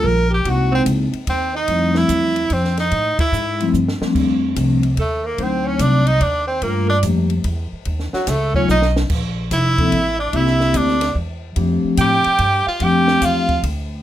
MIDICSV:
0, 0, Header, 1, 7, 480
1, 0, Start_track
1, 0, Key_signature, -1, "major"
1, 0, Tempo, 412088
1, 528, Time_signature, 3, 2, 24, 8
1, 16336, End_track
2, 0, Start_track
2, 0, Title_t, "Alto saxophone"
2, 0, Program_c, 0, 65
2, 43, Note_on_c, 0, 70, 78
2, 346, Note_off_c, 0, 70, 0
2, 353, Note_on_c, 0, 67, 70
2, 530, Note_on_c, 0, 66, 67
2, 547, Note_off_c, 0, 67, 0
2, 825, Note_off_c, 0, 66, 0
2, 832, Note_on_c, 0, 60, 71
2, 989, Note_off_c, 0, 60, 0
2, 1503, Note_on_c, 0, 60, 61
2, 1788, Note_off_c, 0, 60, 0
2, 1799, Note_on_c, 0, 63, 73
2, 2278, Note_on_c, 0, 64, 77
2, 2296, Note_off_c, 0, 63, 0
2, 2944, Note_on_c, 0, 60, 62
2, 2962, Note_off_c, 0, 64, 0
2, 3242, Note_off_c, 0, 60, 0
2, 3249, Note_on_c, 0, 63, 71
2, 3688, Note_off_c, 0, 63, 0
2, 3718, Note_on_c, 0, 64, 67
2, 4314, Note_off_c, 0, 64, 0
2, 5814, Note_on_c, 0, 69, 59
2, 6109, Note_on_c, 0, 70, 60
2, 6126, Note_off_c, 0, 69, 0
2, 6282, Note_on_c, 0, 72, 67
2, 6299, Note_off_c, 0, 70, 0
2, 6574, Note_on_c, 0, 73, 73
2, 6591, Note_off_c, 0, 72, 0
2, 6759, Note_on_c, 0, 74, 76
2, 6776, Note_off_c, 0, 73, 0
2, 7057, Note_on_c, 0, 75, 92
2, 7075, Note_off_c, 0, 74, 0
2, 7228, Note_on_c, 0, 74, 74
2, 7246, Note_off_c, 0, 75, 0
2, 7530, Note_off_c, 0, 74, 0
2, 7537, Note_on_c, 0, 72, 61
2, 7722, Note_on_c, 0, 70, 68
2, 7739, Note_off_c, 0, 72, 0
2, 8035, Note_off_c, 0, 70, 0
2, 8040, Note_on_c, 0, 74, 75
2, 8188, Note_off_c, 0, 74, 0
2, 9491, Note_on_c, 0, 66, 66
2, 9671, Note_on_c, 0, 69, 71
2, 9688, Note_off_c, 0, 66, 0
2, 9963, Note_off_c, 0, 69, 0
2, 9970, Note_on_c, 0, 73, 84
2, 10114, Note_off_c, 0, 73, 0
2, 10143, Note_on_c, 0, 75, 77
2, 10425, Note_off_c, 0, 75, 0
2, 11096, Note_on_c, 0, 76, 77
2, 11837, Note_off_c, 0, 76, 0
2, 11867, Note_on_c, 0, 74, 70
2, 12042, Note_on_c, 0, 76, 81
2, 12059, Note_off_c, 0, 74, 0
2, 12539, Note_on_c, 0, 74, 69
2, 12556, Note_off_c, 0, 76, 0
2, 13009, Note_off_c, 0, 74, 0
2, 13961, Note_on_c, 0, 79, 99
2, 14711, Note_off_c, 0, 79, 0
2, 14754, Note_on_c, 0, 77, 78
2, 14939, Note_on_c, 0, 79, 92
2, 14956, Note_off_c, 0, 77, 0
2, 15406, Note_on_c, 0, 77, 78
2, 15423, Note_off_c, 0, 79, 0
2, 15885, Note_off_c, 0, 77, 0
2, 16336, End_track
3, 0, Start_track
3, 0, Title_t, "Tenor saxophone"
3, 0, Program_c, 1, 66
3, 79, Note_on_c, 1, 70, 103
3, 379, Note_off_c, 1, 70, 0
3, 398, Note_on_c, 1, 67, 77
3, 581, Note_on_c, 1, 66, 74
3, 598, Note_off_c, 1, 67, 0
3, 865, Note_off_c, 1, 66, 0
3, 872, Note_on_c, 1, 60, 83
3, 961, Note_off_c, 1, 60, 0
3, 1510, Note_on_c, 1, 60, 84
3, 1791, Note_off_c, 1, 60, 0
3, 1817, Note_on_c, 1, 63, 79
3, 2296, Note_on_c, 1, 64, 88
3, 2314, Note_off_c, 1, 63, 0
3, 2951, Note_on_c, 1, 60, 70
3, 2968, Note_off_c, 1, 64, 0
3, 3251, Note_off_c, 1, 60, 0
3, 3261, Note_on_c, 1, 63, 83
3, 3695, Note_off_c, 1, 63, 0
3, 3732, Note_on_c, 1, 64, 78
3, 4322, Note_off_c, 1, 64, 0
3, 5833, Note_on_c, 1, 57, 71
3, 6137, Note_on_c, 1, 58, 67
3, 6154, Note_off_c, 1, 57, 0
3, 6319, Note_on_c, 1, 60, 75
3, 6336, Note_off_c, 1, 58, 0
3, 6608, Note_on_c, 1, 61, 86
3, 6626, Note_off_c, 1, 60, 0
3, 6774, Note_on_c, 1, 62, 83
3, 6792, Note_off_c, 1, 61, 0
3, 7076, Note_on_c, 1, 63, 92
3, 7094, Note_off_c, 1, 62, 0
3, 7257, Note_on_c, 1, 62, 82
3, 7274, Note_off_c, 1, 63, 0
3, 7538, Note_off_c, 1, 62, 0
3, 7545, Note_on_c, 1, 60, 78
3, 7719, Note_on_c, 1, 58, 74
3, 7736, Note_off_c, 1, 60, 0
3, 8026, Note_off_c, 1, 58, 0
3, 8033, Note_on_c, 1, 62, 84
3, 8131, Note_off_c, 1, 62, 0
3, 9480, Note_on_c, 1, 54, 78
3, 9654, Note_on_c, 1, 57, 82
3, 9672, Note_off_c, 1, 54, 0
3, 9958, Note_off_c, 1, 57, 0
3, 9965, Note_on_c, 1, 61, 75
3, 10111, Note_off_c, 1, 61, 0
3, 10144, Note_on_c, 1, 63, 85
3, 10326, Note_off_c, 1, 63, 0
3, 11101, Note_on_c, 1, 64, 97
3, 11839, Note_off_c, 1, 64, 0
3, 11881, Note_on_c, 1, 62, 77
3, 12067, Note_on_c, 1, 64, 86
3, 12085, Note_off_c, 1, 62, 0
3, 12539, Note_on_c, 1, 62, 84
3, 12556, Note_off_c, 1, 64, 0
3, 13009, Note_off_c, 1, 62, 0
3, 13989, Note_on_c, 1, 67, 115
3, 14725, Note_off_c, 1, 67, 0
3, 14774, Note_on_c, 1, 65, 89
3, 14960, Note_on_c, 1, 67, 114
3, 14977, Note_off_c, 1, 65, 0
3, 15438, Note_on_c, 1, 65, 92
3, 15455, Note_off_c, 1, 67, 0
3, 15901, Note_off_c, 1, 65, 0
3, 16336, End_track
4, 0, Start_track
4, 0, Title_t, "Vibraphone"
4, 0, Program_c, 2, 11
4, 528, Note_on_c, 2, 64, 52
4, 534, Note_on_c, 2, 56, 51
4, 535, Note_on_c, 2, 58, 50
4, 538, Note_on_c, 2, 60, 47
4, 543, Note_on_c, 2, 63, 60
4, 1259, Note_off_c, 2, 64, 0
4, 1262, Note_off_c, 2, 56, 0
4, 1262, Note_off_c, 2, 58, 0
4, 1264, Note_off_c, 2, 60, 0
4, 1266, Note_off_c, 2, 63, 0
4, 1960, Note_on_c, 2, 53, 55
4, 1960, Note_on_c, 2, 57, 49
4, 1962, Note_on_c, 2, 55, 50
4, 1963, Note_on_c, 2, 60, 53
4, 1965, Note_on_c, 2, 64, 59
4, 2693, Note_off_c, 2, 53, 0
4, 2693, Note_off_c, 2, 57, 0
4, 2694, Note_off_c, 2, 55, 0
4, 2694, Note_off_c, 2, 60, 0
4, 2695, Note_off_c, 2, 64, 0
4, 4192, Note_on_c, 2, 53, 69
4, 4199, Note_on_c, 2, 55, 67
4, 4199, Note_on_c, 2, 57, 63
4, 4199, Note_on_c, 2, 60, 64
4, 4206, Note_on_c, 2, 64, 74
4, 4340, Note_off_c, 2, 53, 0
4, 4344, Note_off_c, 2, 55, 0
4, 4344, Note_off_c, 2, 57, 0
4, 4344, Note_off_c, 2, 60, 0
4, 4347, Note_off_c, 2, 64, 0
4, 4670, Note_on_c, 2, 55, 58
4, 4673, Note_on_c, 2, 53, 67
4, 4675, Note_on_c, 2, 57, 62
4, 4676, Note_on_c, 2, 60, 69
4, 4683, Note_on_c, 2, 62, 72
4, 4819, Note_off_c, 2, 55, 0
4, 4820, Note_off_c, 2, 53, 0
4, 4821, Note_off_c, 2, 57, 0
4, 4822, Note_off_c, 2, 60, 0
4, 4825, Note_off_c, 2, 62, 0
4, 4838, Note_on_c, 2, 53, 47
4, 4841, Note_on_c, 2, 55, 40
4, 4842, Note_on_c, 2, 57, 47
4, 4845, Note_on_c, 2, 60, 43
4, 4849, Note_on_c, 2, 62, 53
4, 5570, Note_off_c, 2, 53, 0
4, 5571, Note_off_c, 2, 55, 0
4, 5572, Note_off_c, 2, 57, 0
4, 5573, Note_off_c, 2, 60, 0
4, 5575, Note_off_c, 2, 62, 0
4, 6275, Note_on_c, 2, 63, 52
4, 6278, Note_on_c, 2, 54, 47
4, 6280, Note_on_c, 2, 57, 48
4, 6283, Note_on_c, 2, 60, 50
4, 6283, Note_on_c, 2, 62, 57
4, 7008, Note_off_c, 2, 63, 0
4, 7010, Note_off_c, 2, 54, 0
4, 7010, Note_off_c, 2, 57, 0
4, 7012, Note_off_c, 2, 60, 0
4, 7012, Note_off_c, 2, 62, 0
4, 7717, Note_on_c, 2, 55, 51
4, 7717, Note_on_c, 2, 57, 49
4, 7719, Note_on_c, 2, 58, 49
4, 7721, Note_on_c, 2, 62, 51
4, 7724, Note_on_c, 2, 65, 64
4, 8001, Note_off_c, 2, 55, 0
4, 8001, Note_off_c, 2, 57, 0
4, 8002, Note_off_c, 2, 58, 0
4, 8003, Note_off_c, 2, 62, 0
4, 8004, Note_off_c, 2, 65, 0
4, 8192, Note_on_c, 2, 55, 62
4, 8196, Note_on_c, 2, 57, 60
4, 8197, Note_on_c, 2, 58, 61
4, 8198, Note_on_c, 2, 62, 55
4, 8205, Note_on_c, 2, 67, 69
4, 8478, Note_off_c, 2, 55, 0
4, 8480, Note_off_c, 2, 57, 0
4, 8481, Note_off_c, 2, 58, 0
4, 8482, Note_off_c, 2, 62, 0
4, 8485, Note_off_c, 2, 67, 0
4, 9939, Note_on_c, 2, 54, 62
4, 9940, Note_on_c, 2, 57, 52
4, 9948, Note_on_c, 2, 59, 53
4, 9949, Note_on_c, 2, 63, 54
4, 9952, Note_on_c, 2, 65, 71
4, 10093, Note_off_c, 2, 54, 0
4, 10093, Note_off_c, 2, 57, 0
4, 10097, Note_off_c, 2, 59, 0
4, 10098, Note_off_c, 2, 63, 0
4, 10099, Note_off_c, 2, 65, 0
4, 11391, Note_on_c, 2, 53, 63
4, 11392, Note_on_c, 2, 60, 57
4, 11393, Note_on_c, 2, 58, 54
4, 11396, Note_on_c, 2, 62, 54
4, 11397, Note_on_c, 2, 69, 68
4, 11539, Note_off_c, 2, 53, 0
4, 11540, Note_off_c, 2, 58, 0
4, 11540, Note_off_c, 2, 60, 0
4, 11542, Note_off_c, 2, 62, 0
4, 11543, Note_off_c, 2, 69, 0
4, 12031, Note_on_c, 2, 58, 61
4, 12031, Note_on_c, 2, 64, 59
4, 12034, Note_on_c, 2, 60, 63
4, 12036, Note_on_c, 2, 67, 64
4, 12037, Note_on_c, 2, 62, 63
4, 12768, Note_off_c, 2, 58, 0
4, 12768, Note_off_c, 2, 64, 0
4, 12770, Note_off_c, 2, 60, 0
4, 12770, Note_off_c, 2, 67, 0
4, 12771, Note_off_c, 2, 62, 0
4, 13466, Note_on_c, 2, 53, 68
4, 13470, Note_on_c, 2, 57, 59
4, 13472, Note_on_c, 2, 60, 60
4, 13474, Note_on_c, 2, 67, 70
4, 13477, Note_on_c, 2, 62, 58
4, 14206, Note_off_c, 2, 53, 0
4, 14208, Note_off_c, 2, 57, 0
4, 14210, Note_off_c, 2, 60, 0
4, 14211, Note_off_c, 2, 67, 0
4, 14212, Note_off_c, 2, 62, 0
4, 14906, Note_on_c, 2, 53, 74
4, 14909, Note_on_c, 2, 57, 63
4, 14911, Note_on_c, 2, 60, 65
4, 14916, Note_on_c, 2, 62, 66
4, 14916, Note_on_c, 2, 67, 76
4, 15648, Note_off_c, 2, 53, 0
4, 15650, Note_off_c, 2, 57, 0
4, 15650, Note_off_c, 2, 60, 0
4, 15653, Note_off_c, 2, 62, 0
4, 15653, Note_off_c, 2, 67, 0
4, 16336, End_track
5, 0, Start_track
5, 0, Title_t, "Upright bass"
5, 0, Program_c, 3, 32
5, 53, Note_on_c, 3, 34, 89
5, 515, Note_off_c, 3, 34, 0
5, 527, Note_on_c, 3, 36, 75
5, 992, Note_off_c, 3, 36, 0
5, 1001, Note_on_c, 3, 37, 91
5, 1297, Note_off_c, 3, 37, 0
5, 1480, Note_on_c, 3, 39, 84
5, 1946, Note_off_c, 3, 39, 0
5, 1960, Note_on_c, 3, 41, 79
5, 2426, Note_off_c, 3, 41, 0
5, 2437, Note_on_c, 3, 40, 89
5, 2904, Note_off_c, 3, 40, 0
5, 2915, Note_on_c, 3, 41, 81
5, 3382, Note_off_c, 3, 41, 0
5, 3399, Note_on_c, 3, 45, 81
5, 3693, Note_off_c, 3, 45, 0
5, 3869, Note_on_c, 3, 44, 86
5, 4338, Note_off_c, 3, 44, 0
5, 4350, Note_on_c, 3, 43, 86
5, 4647, Note_off_c, 3, 43, 0
5, 4838, Note_on_c, 3, 41, 75
5, 5303, Note_off_c, 3, 41, 0
5, 5313, Note_on_c, 3, 36, 85
5, 5780, Note_off_c, 3, 36, 0
5, 5790, Note_on_c, 3, 39, 84
5, 6258, Note_off_c, 3, 39, 0
5, 6273, Note_on_c, 3, 38, 78
5, 6740, Note_off_c, 3, 38, 0
5, 6750, Note_on_c, 3, 36, 88
5, 7218, Note_off_c, 3, 36, 0
5, 7229, Note_on_c, 3, 39, 86
5, 7698, Note_off_c, 3, 39, 0
5, 7711, Note_on_c, 3, 43, 80
5, 8179, Note_off_c, 3, 43, 0
5, 8193, Note_on_c, 3, 41, 88
5, 8660, Note_off_c, 3, 41, 0
5, 8671, Note_on_c, 3, 40, 87
5, 8967, Note_off_c, 3, 40, 0
5, 9156, Note_on_c, 3, 39, 76
5, 9450, Note_off_c, 3, 39, 0
5, 9633, Note_on_c, 3, 37, 84
5, 10100, Note_off_c, 3, 37, 0
5, 10121, Note_on_c, 3, 35, 87
5, 10584, Note_off_c, 3, 35, 0
5, 10598, Note_on_c, 3, 34, 71
5, 11063, Note_off_c, 3, 34, 0
5, 11079, Note_on_c, 3, 29, 87
5, 11544, Note_off_c, 3, 29, 0
5, 11557, Note_on_c, 3, 33, 81
5, 12023, Note_off_c, 3, 33, 0
5, 12035, Note_on_c, 3, 36, 78
5, 12502, Note_off_c, 3, 36, 0
5, 12515, Note_on_c, 3, 38, 95
5, 12982, Note_off_c, 3, 38, 0
5, 12990, Note_on_c, 3, 40, 84
5, 13460, Note_off_c, 3, 40, 0
5, 13469, Note_on_c, 3, 41, 90
5, 13768, Note_off_c, 3, 41, 0
5, 13951, Note_on_c, 3, 45, 96
5, 14250, Note_off_c, 3, 45, 0
5, 14432, Note_on_c, 3, 43, 87
5, 14730, Note_off_c, 3, 43, 0
5, 14914, Note_on_c, 3, 41, 90
5, 15384, Note_off_c, 3, 41, 0
5, 15395, Note_on_c, 3, 40, 94
5, 15865, Note_off_c, 3, 40, 0
5, 15880, Note_on_c, 3, 38, 91
5, 16336, Note_off_c, 3, 38, 0
5, 16336, End_track
6, 0, Start_track
6, 0, Title_t, "Muted upright bass strokes"
6, 1317, Note_on_c, 9, 29, 36
6, 1434, Note_off_c, 9, 29, 0
6, 3713, Note_on_c, 9, 29, 40
6, 3829, Note_off_c, 9, 29, 0
6, 4667, Note_on_c, 9, 29, 37
6, 4783, Note_off_c, 9, 29, 0
6, 8994, Note_on_c, 9, 29, 42
6, 9111, Note_off_c, 9, 29, 0
6, 9476, Note_on_c, 9, 29, 35
6, 9592, Note_off_c, 9, 29, 0
6, 13792, Note_on_c, 9, 29, 38
6, 13908, Note_off_c, 9, 29, 0
6, 14282, Note_on_c, 9, 29, 38
6, 14399, Note_off_c, 9, 29, 0
6, 14756, Note_on_c, 9, 29, 39
6, 14873, Note_off_c, 9, 29, 0
6, 16336, End_track
7, 0, Start_track
7, 0, Title_t, "Drums"
7, 50, Note_on_c, 9, 36, 17
7, 167, Note_off_c, 9, 36, 0
7, 527, Note_on_c, 9, 51, 53
7, 528, Note_on_c, 9, 36, 23
7, 644, Note_off_c, 9, 36, 0
7, 644, Note_off_c, 9, 51, 0
7, 1001, Note_on_c, 9, 44, 53
7, 1001, Note_on_c, 9, 51, 67
7, 1005, Note_on_c, 9, 36, 20
7, 1118, Note_off_c, 9, 44, 0
7, 1118, Note_off_c, 9, 51, 0
7, 1121, Note_off_c, 9, 36, 0
7, 1321, Note_on_c, 9, 51, 39
7, 1437, Note_off_c, 9, 51, 0
7, 1480, Note_on_c, 9, 51, 60
7, 1482, Note_on_c, 9, 36, 20
7, 1596, Note_off_c, 9, 51, 0
7, 1598, Note_off_c, 9, 36, 0
7, 1953, Note_on_c, 9, 51, 55
7, 1959, Note_on_c, 9, 36, 16
7, 2070, Note_off_c, 9, 51, 0
7, 2076, Note_off_c, 9, 36, 0
7, 2269, Note_on_c, 9, 38, 56
7, 2385, Note_off_c, 9, 38, 0
7, 2433, Note_on_c, 9, 44, 66
7, 2433, Note_on_c, 9, 51, 63
7, 2438, Note_on_c, 9, 36, 25
7, 2550, Note_off_c, 9, 44, 0
7, 2550, Note_off_c, 9, 51, 0
7, 2554, Note_off_c, 9, 36, 0
7, 2748, Note_on_c, 9, 51, 43
7, 2865, Note_off_c, 9, 51, 0
7, 2910, Note_on_c, 9, 51, 58
7, 2917, Note_on_c, 9, 36, 20
7, 3026, Note_off_c, 9, 51, 0
7, 3033, Note_off_c, 9, 36, 0
7, 3079, Note_on_c, 9, 38, 27
7, 3196, Note_off_c, 9, 38, 0
7, 3231, Note_on_c, 9, 51, 41
7, 3239, Note_on_c, 9, 38, 40
7, 3347, Note_off_c, 9, 51, 0
7, 3355, Note_off_c, 9, 38, 0
7, 3395, Note_on_c, 9, 51, 54
7, 3398, Note_on_c, 9, 36, 21
7, 3511, Note_off_c, 9, 51, 0
7, 3514, Note_off_c, 9, 36, 0
7, 3713, Note_on_c, 9, 51, 68
7, 3714, Note_on_c, 9, 36, 76
7, 3830, Note_off_c, 9, 36, 0
7, 3830, Note_off_c, 9, 51, 0
7, 3877, Note_on_c, 9, 44, 53
7, 3993, Note_off_c, 9, 44, 0
7, 4198, Note_on_c, 9, 51, 44
7, 4314, Note_off_c, 9, 51, 0
7, 4356, Note_on_c, 9, 44, 50
7, 4472, Note_off_c, 9, 44, 0
7, 4525, Note_on_c, 9, 38, 56
7, 4642, Note_off_c, 9, 38, 0
7, 4680, Note_on_c, 9, 38, 73
7, 4796, Note_off_c, 9, 38, 0
7, 4837, Note_on_c, 9, 36, 59
7, 4841, Note_on_c, 9, 49, 58
7, 4953, Note_off_c, 9, 36, 0
7, 4957, Note_off_c, 9, 49, 0
7, 5314, Note_on_c, 9, 36, 20
7, 5315, Note_on_c, 9, 44, 49
7, 5315, Note_on_c, 9, 51, 68
7, 5431, Note_off_c, 9, 36, 0
7, 5431, Note_off_c, 9, 44, 0
7, 5431, Note_off_c, 9, 51, 0
7, 5627, Note_on_c, 9, 51, 40
7, 5743, Note_off_c, 9, 51, 0
7, 5790, Note_on_c, 9, 51, 50
7, 5792, Note_on_c, 9, 36, 21
7, 5906, Note_off_c, 9, 51, 0
7, 5909, Note_off_c, 9, 36, 0
7, 6269, Note_on_c, 9, 51, 49
7, 6271, Note_on_c, 9, 36, 22
7, 6386, Note_off_c, 9, 51, 0
7, 6387, Note_off_c, 9, 36, 0
7, 6747, Note_on_c, 9, 44, 60
7, 6747, Note_on_c, 9, 51, 69
7, 6751, Note_on_c, 9, 36, 23
7, 6863, Note_off_c, 9, 44, 0
7, 6863, Note_off_c, 9, 51, 0
7, 6867, Note_off_c, 9, 36, 0
7, 7066, Note_on_c, 9, 51, 44
7, 7182, Note_off_c, 9, 51, 0
7, 7229, Note_on_c, 9, 51, 57
7, 7231, Note_on_c, 9, 36, 23
7, 7345, Note_off_c, 9, 51, 0
7, 7347, Note_off_c, 9, 36, 0
7, 7706, Note_on_c, 9, 51, 51
7, 7709, Note_on_c, 9, 36, 22
7, 7823, Note_off_c, 9, 51, 0
7, 7826, Note_off_c, 9, 36, 0
7, 8185, Note_on_c, 9, 44, 53
7, 8185, Note_on_c, 9, 51, 65
7, 8189, Note_on_c, 9, 36, 19
7, 8301, Note_off_c, 9, 44, 0
7, 8301, Note_off_c, 9, 51, 0
7, 8306, Note_off_c, 9, 36, 0
7, 8500, Note_on_c, 9, 51, 40
7, 8616, Note_off_c, 9, 51, 0
7, 8666, Note_on_c, 9, 51, 53
7, 8670, Note_on_c, 9, 36, 23
7, 8783, Note_off_c, 9, 51, 0
7, 8786, Note_off_c, 9, 36, 0
7, 9146, Note_on_c, 9, 51, 49
7, 9153, Note_on_c, 9, 36, 21
7, 9263, Note_off_c, 9, 51, 0
7, 9269, Note_off_c, 9, 36, 0
7, 9313, Note_on_c, 9, 38, 28
7, 9430, Note_off_c, 9, 38, 0
7, 9473, Note_on_c, 9, 38, 41
7, 9589, Note_off_c, 9, 38, 0
7, 9631, Note_on_c, 9, 44, 62
7, 9631, Note_on_c, 9, 51, 69
7, 9633, Note_on_c, 9, 38, 36
7, 9635, Note_on_c, 9, 36, 24
7, 9748, Note_off_c, 9, 44, 0
7, 9748, Note_off_c, 9, 51, 0
7, 9750, Note_off_c, 9, 38, 0
7, 9752, Note_off_c, 9, 36, 0
7, 9954, Note_on_c, 9, 36, 55
7, 10070, Note_off_c, 9, 36, 0
7, 10118, Note_on_c, 9, 44, 47
7, 10121, Note_on_c, 9, 38, 42
7, 10235, Note_off_c, 9, 44, 0
7, 10237, Note_off_c, 9, 38, 0
7, 10276, Note_on_c, 9, 38, 59
7, 10392, Note_off_c, 9, 38, 0
7, 10441, Note_on_c, 9, 38, 79
7, 10558, Note_off_c, 9, 38, 0
7, 10595, Note_on_c, 9, 49, 69
7, 10599, Note_on_c, 9, 36, 66
7, 10712, Note_off_c, 9, 49, 0
7, 10716, Note_off_c, 9, 36, 0
7, 11077, Note_on_c, 9, 44, 58
7, 11077, Note_on_c, 9, 51, 66
7, 11079, Note_on_c, 9, 36, 24
7, 11194, Note_off_c, 9, 44, 0
7, 11194, Note_off_c, 9, 51, 0
7, 11195, Note_off_c, 9, 36, 0
7, 11394, Note_on_c, 9, 51, 46
7, 11395, Note_on_c, 9, 36, 57
7, 11510, Note_off_c, 9, 51, 0
7, 11511, Note_off_c, 9, 36, 0
7, 11555, Note_on_c, 9, 51, 54
7, 11558, Note_on_c, 9, 36, 19
7, 11671, Note_off_c, 9, 51, 0
7, 11674, Note_off_c, 9, 36, 0
7, 12033, Note_on_c, 9, 51, 55
7, 12036, Note_on_c, 9, 36, 21
7, 12149, Note_off_c, 9, 51, 0
7, 12152, Note_off_c, 9, 36, 0
7, 12191, Note_on_c, 9, 38, 28
7, 12308, Note_off_c, 9, 38, 0
7, 12351, Note_on_c, 9, 38, 42
7, 12468, Note_off_c, 9, 38, 0
7, 12509, Note_on_c, 9, 44, 66
7, 12509, Note_on_c, 9, 51, 71
7, 12513, Note_on_c, 9, 36, 18
7, 12625, Note_off_c, 9, 44, 0
7, 12625, Note_off_c, 9, 51, 0
7, 12630, Note_off_c, 9, 36, 0
7, 12675, Note_on_c, 9, 38, 27
7, 12791, Note_off_c, 9, 38, 0
7, 12824, Note_on_c, 9, 51, 64
7, 12829, Note_on_c, 9, 38, 43
7, 12941, Note_off_c, 9, 51, 0
7, 12945, Note_off_c, 9, 38, 0
7, 12991, Note_on_c, 9, 36, 24
7, 13108, Note_off_c, 9, 36, 0
7, 13464, Note_on_c, 9, 51, 55
7, 13471, Note_on_c, 9, 36, 18
7, 13581, Note_off_c, 9, 51, 0
7, 13588, Note_off_c, 9, 36, 0
7, 13946, Note_on_c, 9, 44, 61
7, 13946, Note_on_c, 9, 51, 68
7, 13951, Note_on_c, 9, 36, 24
7, 14062, Note_off_c, 9, 44, 0
7, 14062, Note_off_c, 9, 51, 0
7, 14068, Note_off_c, 9, 36, 0
7, 14260, Note_on_c, 9, 51, 48
7, 14376, Note_off_c, 9, 51, 0
7, 14426, Note_on_c, 9, 51, 58
7, 14431, Note_on_c, 9, 36, 24
7, 14543, Note_off_c, 9, 51, 0
7, 14547, Note_off_c, 9, 36, 0
7, 14909, Note_on_c, 9, 51, 58
7, 14913, Note_on_c, 9, 36, 20
7, 15025, Note_off_c, 9, 51, 0
7, 15030, Note_off_c, 9, 36, 0
7, 15232, Note_on_c, 9, 38, 56
7, 15348, Note_off_c, 9, 38, 0
7, 15394, Note_on_c, 9, 44, 61
7, 15394, Note_on_c, 9, 51, 71
7, 15395, Note_on_c, 9, 36, 24
7, 15510, Note_off_c, 9, 44, 0
7, 15510, Note_off_c, 9, 51, 0
7, 15511, Note_off_c, 9, 36, 0
7, 15709, Note_on_c, 9, 51, 43
7, 15713, Note_on_c, 9, 36, 51
7, 15825, Note_off_c, 9, 51, 0
7, 15830, Note_off_c, 9, 36, 0
7, 15879, Note_on_c, 9, 36, 28
7, 15881, Note_on_c, 9, 51, 64
7, 15996, Note_off_c, 9, 36, 0
7, 15998, Note_off_c, 9, 51, 0
7, 16336, End_track
0, 0, End_of_file